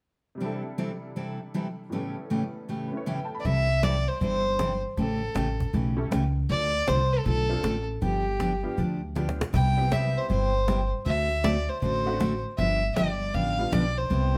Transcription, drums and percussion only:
3.45 cajon bass soft
3.83 cajon slap medium
4.21 cajon bass soft
4.59 cajon slap medium
4.97 cajon bass soft
5.36 cajon slap medium
5.60 cajon bass soft
5.74 cajon bass soft
6.12 cajon slap medium
6.50 cajon bass soft
6.88 cajon slap medium
7.26 cajon bass soft
7.64 cajon slap medium
8.02 cajon bass soft
8.40 cajon slap medium
8.78 cajon bass soft
9.16 cajon slap soft
9.29 cajon slap medium
9.41 cajon slap medium
9.54 cajon bass medium
9.92 cajon slap medium
10.30 cajon bass soft
10.68 cajon slap medium
11.06 cajon bass soft
11.44 cajon slap medium
11.82 cajon bass soft
12.21 cajon slap medium
12.58 cajon bass soft
12.96 cajon slap medium
13.35 cajon bass soft
13.73 cajon slap medium
14.11 cajon bass soft

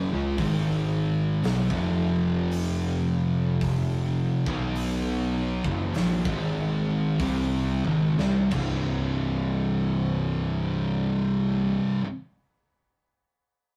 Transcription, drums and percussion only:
0.38 kick loud
0.38 open hi-hat medium
1.44 snare loud
1.44 open hi-hat medium
1.70 kick loud
2.51 open hi-hat medium
3.61 kick loud
3.61 open hi-hat medium
4.46 kick loud
4.75 open hi-hat medium
5.64 kick loud
5.94 snare loud
5.94 open hi-hat medium
6.25 kick loud
7.20 kick loud
7.20 open hi-hat medium
7.85 high tom medium
8.19 snare loud
8.51 kick loud
8.51 floor tom loud
8.51 crash medium

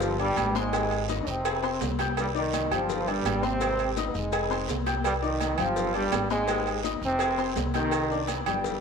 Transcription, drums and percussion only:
0.00 cowbell loud
0.00 high conga soft
0.00 low conga medium
0.00 long guiro medium
0.00 maracas medium
0.19 high conga soft
0.19 low agogo medium
0.19 maracas soft
0.36 cowbell medium
0.36 high conga medium
0.36 low agogo loud
0.36 short guiro medium
0.36 maracas medium
0.55 high conga medium
0.55 short guiro medium
0.55 maracas soft
0.73 cowbell loud
0.73 low agogo loud
0.73 long guiro medium
0.73 maracas medium
0.91 high conga soft
0.91 low agogo medium
0.91 maracas soft
1.09 cowbell medium
1.09 high conga loud
1.09 short guiro medium
1.09 maracas medium
1.27 high conga soft
1.27 short guiro medium
1.27 maracas soft
1.45 cowbell loud
1.45 high conga soft
1.45 low agogo loud
1.45 long guiro medium
1.45 maracas medium
1.63 high conga soft
1.63 low agogo medium
1.63 maracas soft
1.81 cowbell medium
1.81 high conga medium
1.81 low timbale medium
1.81 short guiro medium
1.81 maracas medium
1.99 cowbell medium
1.99 high conga loud
1.99 low agogo loud
1.99 short guiro medium
1.99 maracas soft
2.17 cowbell loud
2.17 high conga soft
2.17 low agogo loud
2.17 long guiro medium
2.17 maracas medium
2.36 maracas soft
2.53 cowbell medium
2.53 high conga loud
2.53 low agogo medium
2.53 short guiro medium
2.53 maracas medium
2.72 high conga soft
2.72 low conga medium
2.72 low agogo loud
2.72 short guiro medium
2.72 maracas soft
2.89 cowbell loud
2.89 high conga soft
2.89 low conga medium
2.89 long guiro medium
2.89 maracas medium
3.07 high conga soft
3.07 low agogo medium
3.07 maracas soft
3.25 cowbell medium
3.25 high conga medium
3.25 low timbale medium
3.25 low agogo loud
3.25 short guiro medium
3.25 maracas medium
3.43 high conga medium
3.43 short guiro medium
3.43 maracas soft
3.61 cowbell loud
3.61 low agogo loud
3.61 long guiro medium
3.61 maracas medium
3.79 low agogo medium
3.79 maracas soft
3.97 cowbell medium
3.97 high conga loud
3.97 short guiro medium
3.97 maracas medium
4.14 high conga soft
4.14 short guiro medium
4.14 maracas soft
4.32 cowbell loud
4.32 low agogo loud
4.32 long guiro medium
4.32 maracas medium
4.51 high conga soft
4.51 low agogo medium
4.51 maracas soft
4.68 cowbell medium
4.68 high conga medium
4.68 low timbale medium
4.68 short guiro medium
4.68 maracas medium
4.86 cowbell medium
4.86 high conga medium
4.86 low agogo medium
4.86 short guiro medium
4.86 maracas soft
5.04 cowbell loud
5.04 low agogo loud
5.04 long guiro medium
5.04 maracas medium
5.23 high conga soft
5.23 maracas soft
5.40 cowbell medium
5.40 high conga medium
5.40 low agogo medium
5.40 short guiro medium
5.40 maracas medium
5.58 high conga soft
5.58 low conga medium
5.58 low agogo loud
5.58 short guiro medium
5.58 maracas soft
5.76 cowbell loud
5.76 high conga soft
5.76 low conga medium
5.76 long guiro medium
5.76 maracas medium
5.94 high conga soft
5.94 low agogo medium
5.94 maracas soft
6.12 cowbell medium
6.12 high conga medium
6.12 low timbale medium
6.12 low agogo loud
6.12 short guiro medium
6.12 maracas medium
6.30 high conga medium
6.30 short guiro medium
6.30 maracas soft
6.48 cowbell loud
6.48 high conga soft
6.48 low agogo loud
6.48 long guiro medium
6.48 maracas medium
6.67 high conga soft
6.67 low agogo medium
6.67 maracas soft
6.83 cowbell medium
6.83 high conga loud
6.83 short guiro medium
6.83 maracas medium
7.03 high conga soft
7.03 short guiro medium
7.03 maracas soft
7.19 cowbell loud
7.19 high conga soft
7.19 low agogo loud
7.19 long guiro medium
7.19 maracas medium
7.38 high conga soft
7.38 low agogo medium
7.38 maracas soft
7.56 cowbell medium
7.56 high conga loud
7.56 low timbale medium
7.56 short guiro medium
7.56 maracas medium
7.74 cowbell medium
7.74 high conga medium
7.74 low agogo medium
7.74 short guiro medium
7.74 maracas soft
7.91 cowbell loud
7.91 low agogo loud
7.91 long guiro medium
7.91 maracas medium
8.11 high conga soft
8.11 maracas soft
8.27 cowbell medium
8.27 high conga medium
8.27 low agogo medium
8.27 short guiro medium
8.27 maracas medium
8.46 high conga soft
8.46 low conga medium
8.46 low agogo loud
8.46 short guiro medium
8.46 maracas soft
8.64 cowbell loud
8.64 high conga soft
8.64 low conga medium
8.64 long guiro medium
8.64 maracas medium

